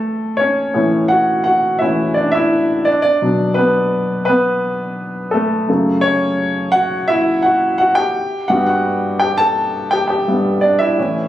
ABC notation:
X:1
M:4/4
L:1/16
Q:1/4=85
K:Edor
V:1 name="Grand piano"
[A,A]2 [Cc]4 [Ff]2 [Ff]2 [Ee]2 [Dd] [Ee]3 | [Dd] [Dd]3 [B,B]4 [B,B]6 [A,A]2- | [A,A]2 [Cc]4 [Ff]2 [Ee]2 [Ff]2 [Ff] [Gg]3 | [Ff] [Ff]3 [Gg] [Aa]3 [Gg] [Gg]3 [Dd] [Ee]3 |]
V:2 name="Grand piano" clef=bass
z4 [A,,E,C]6 [A,,E,C]2 z4 | z2 [B,,F,D]6 z8 | [F,,C,A,]6 z8 z2 | [G,,G,B,]8- [G,,G,B,]2 [G,,G,B,]2 z2 [A,,E,C]2 |]